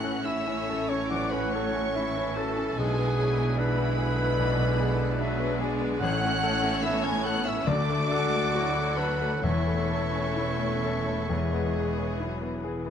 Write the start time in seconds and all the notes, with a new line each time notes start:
Already playing: A1 A2 E3 A3 C#4 A4 C#5 F#5 F#6
0.04 C#4
0.24 A3 C#4 E4 E5 E6
0.47 C#4
0.69 A4
0.88 C#4 C#5 C#6
1.08 E3 F#3 D5 F#5 D6
1.30 C#4 B4 B5
1.50 C#5 C#6
1.55 A4
1.75 C#4
1.94 E3 E4 A4 E5
2.17 C#4
2.36 F#4 A4 A5
2.58 C#4
2.77 B1 B2 G#3 D4 E4 G#4 B4 G#5
2.99 B3
3.18 F#3 G#4
3.37 B3
3.57 E3 D4 G#4 B4 B5
3.78 B3
3.98 D3 G#4
4.18 B3
4.39 B1 G#4 B4 D5
4.59 B2
4.80 G#4 A4
4.99 B3
5.19 F#3 D4 G#4 B4 E5
5.40 B3
5.60 G#3 G#4 D5
5.81 B3
6.00 A1 A2 A3 C#4 A4 C#5 F#5 F#6
6.24 C#4
6.42 A3 A4
6.63 C#4
6.83 B3 C#4 E4 E5 E6
7.04 C#4 G#5 G#6
7.25 A4 F#5 F#6
7.45 C#4 E5 E6
7.67 D2 A3 D4 F#4 A4 D5 D6
7.89 A3
8.11 G#3 A4 F#5
8.34 A3
8.54 F#3 E4 F#4
8.77 A3
8.97 D4 A4 B4 B5
9.21 A3
9.40 E1 E2 E3 C#4 E4 C#5 E5 C#6
9.44 E4 A4
9.67 A3
9.90 A4
10.13 A3
10.37 A3 E4
10.60 A3
10.84 A4
11.07 A3
11.30 E2 E3 G#3 B3 G#4
11.53 B3
11.76 G#4
11.98 B3
12.20 F#3 E4
12.43 B3
12.64 E3 G#4
12.86 B3